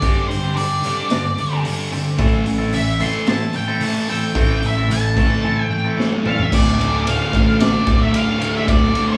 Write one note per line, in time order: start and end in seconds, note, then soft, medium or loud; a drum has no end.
0.00 0.27 G2 medium
0.00 0.84 G2 medium
0.00 0.27 D3 medium
0.00 0.28 G3 medium
0.00 0.20 G3 medium
0.00 0.20 C4 medium
0.00 0.20 D4 medium
0.00 0.20 G4 medium
0.00 0.26 D5 loud
0.00 kick medium
0.00 open hi-hat medium
0.27 0.53 G2 medium
0.27 0.53 D3 medium
0.27 0.53 C5 medium
0.31 open hi-hat medium
0.43 0.61 G3 medium
0.43 0.61 C4 medium
0.43 0.61 D4 medium
0.43 0.61 G4 medium
0.55 0.80 G2 medium
0.55 0.80 D3 medium
0.55 1.60 D5 medium
0.55 open hi-hat medium
0.82 1.08 G2 medium
0.82 1.08 D3 medium
0.82 1.09 G3 medium
0.82 1.01 G3 medium
0.82 1.01 C4 medium
0.82 1.01 D4 medium
0.82 1.02 G4 medium
0.82 open hi-hat medium
1.09 1.34 G2 medium
1.09 1.34 D3 medium
1.09 1.28 G3 medium
1.09 1.28 C4 medium
1.09 1.28 D4 loud
1.09 1.29 G4 medium
1.09 snare loud
1.09 open hi-hat medium
1.37 1.61 G2 medium
1.37 1.62 D3 medium
1.37 muted clean electric guitar stroke soft
1.37 open hi-hat medium
1.51 1.69 G3 medium
1.51 1.69 C4 medium
1.51 1.69 D4 loud
1.51 1.68 G4 loud
1.64 1.89 G2 medium
1.64 1.90 D3 medium
1.64 1.90 G3 medium
1.64 open hi-hat medium
1.92 2.16 G2 medium
1.92 2.16 D3 medium
1.92 2.09 G3 medium
1.92 2.09 C4 medium
1.92 2.09 D4 medium
1.92 2.10 G4 medium
1.92 open hi-hat medium
2.18 3.01 A1 loud
2.18 2.43 A2 medium
2.18 2.44 E3 medium
2.18 2.36 A3 medium
2.18 2.44 A3 loud
2.18 2.36 C4 medium
2.18 2.36 E4 medium
2.18 2.36 A4 medium
2.18 kick loud
2.18 open hi-hat medium
2.46 2.70 A2 medium
2.46 2.70 E3 medium
2.46 open hi-hat medium
2.58 2.77 A3 medium
2.58 2.77 C4 medium
2.58 2.76 E4 medium
2.58 2.76 A4 medium
2.72 2.97 A2 medium
2.72 2.97 E3 medium
2.72 2.99 E5 medium
2.72 open hi-hat medium
2.99 3.25 A2 medium
2.99 3.26 E3 loud
2.99 3.17 A3 medium
2.99 3.26 A3 medium
2.99 3.17 C4 medium
2.99 3.17 E4 medium
2.99 3.18 A4 medium
2.99 3.26 C6 medium
2.99 open hi-hat soft
3.27 3.52 A2 medium
3.27 3.52 E3 medium
3.27 3.44 A3 medium
3.27 3.44 C4 medium
3.27 3.45 E4 medium
3.27 3.45 A4 medium
3.27 3.55 A5 loud
3.27 snare loud
3.27 open hi-hat medium
3.53 3.78 A2 medium
3.53 3.79 E3 medium
3.53 3.80 G5 medium
3.53 muted clean electric guitar stroke soft
3.53 open hi-hat soft
3.68 3.86 A3 medium
3.68 3.85 C4 medium
3.68 3.85 E4 medium
3.68 3.85 A4 loud
3.80 4.06 A2 medium
3.80 4.06 E3 loud
3.80 4.07 A3 loud
3.80 open hi-hat medium
3.84 4.09 A5 medium
4.08 4.32 A2 medium
4.08 4.33 E3 medium
4.08 4.26 A3 medium
4.08 4.26 C4 medium
4.08 4.26 E4 medium
4.08 4.27 A4 loud
4.08 4.64 G5 loud
4.08 open hi-hat medium
4.35 5.17 A1 medium
4.35 4.60 A2 medium
4.35 4.60 E3 medium
4.35 4.61 A3 medium
4.35 4.53 A3 medium
4.35 4.53 C4 medium
4.35 4.53 E4 medium
4.35 4.53 A4 medium
4.35 kick loud
4.35 open hi-hat medium
4.63 4.87 A2 medium
4.63 4.87 E3 medium
4.63 open hi-hat medium
4.67 4.92 E5 medium
4.77 4.94 A3 medium
4.77 4.94 C4 medium
4.77 4.94 E4 medium
4.77 4.94 A4 medium
4.89 5.13 A2 medium
4.89 5.14 E3 medium
4.89 5.63 A5 medium
4.89 open hi-hat medium
5.16 5.42 A2 medium
5.16 5.42 E3 medium
5.16 5.34 A3 medium
5.16 5.43 A3 medium
5.16 5.34 C4 medium
5.16 5.35 E4 medium
5.16 5.35 A4 loud
5.16 kick medium
5.16 open hi-hat medium
5.43 5.68 A2 medium
5.43 5.68 E3 medium
5.43 5.61 A3 medium
5.43 5.61 C4 medium
5.43 5.62 E4 loud
5.43 5.62 A4 loud
5.63 5.94 G5 medium
5.70 5.95 A2 medium
5.70 5.95 E3 medium
5.70 muted clean electric guitar stroke soft
5.84 6.02 A3 medium
5.84 6.02 C4 medium
5.84 6.02 E4 medium
5.84 6.02 A4 loud
5.96 6.22 A2 medium
5.96 6.22 E3 medium
5.96 6.23 A3 loud
5.96 snare medium
6.12 high tom medium
6.24 6.49 A2 medium
6.24 6.49 E3 medium
6.24 6.42 A3 medium
6.24 6.42 C4 medium
6.24 6.42 E4 medium
6.24 6.43 A4 loud
6.24 6.42 F5 loud
6.24 mid tom loud
6.38 6.54 E5 medium
6.38 floor tom medium
6.50 7.14 D1 medium
6.50 6.78 D2 medium
6.50 6.78 A2 loud
6.50 6.80 D3 loud
6.50 7.03 D5 medium
6.50 kick loud
6.50 crash loud
6.79 7.05 D2 medium
6.79 7.05 A2 medium
6.79 7.07 D3 medium
6.79 ride medium
7.05 7.31 D2 medium
7.05 7.31 A2 medium
7.05 7.32 D3 medium
7.05 7.60 F5 medium
7.05 ride loud
7.32 7.74 A1 medium
7.32 7.59 D2 medium
7.32 7.60 A2 medium
7.32 7.60 D3 loud
7.32 kick medium
7.32 ride medium
7.60 7.84 D2 medium
7.60 7.85 A2 medium
7.60 7.86 D3 loud
7.60 8.01 D5 medium
7.60 snare loud
7.60 ride loud
7.86 8.07 D1 medium
7.86 8.11 D2 medium
7.86 8.12 A2 medium
7.86 8.12 D3 medium
7.86 kick medium
7.86 ride medium
8.01 8.15 E5 medium
8.12 8.37 D2 medium
8.12 8.38 A2 medium
8.12 8.39 D3 medium
8.12 8.56 F5 medium
8.12 ride loud
8.38 8.65 D2 medium
8.38 8.65 A2 medium
8.38 8.66 D3 medium
8.38 ride medium
8.56 8.69 E5 medium
8.66 8.89 D1 loud
8.66 8.91 D2 medium
8.66 8.92 A2 loud
8.66 8.93 D3 loud
8.66 9.07 D5 loud
8.66 kick loud
8.66 ride medium
8.70 8.95 A2 medium
8.83 snare soft
8.92 9.17 D2 medium
8.92 9.17 A2 medium
8.92 9.17 D3 loud
8.92 ride medium
9.08 9.17 D5 medium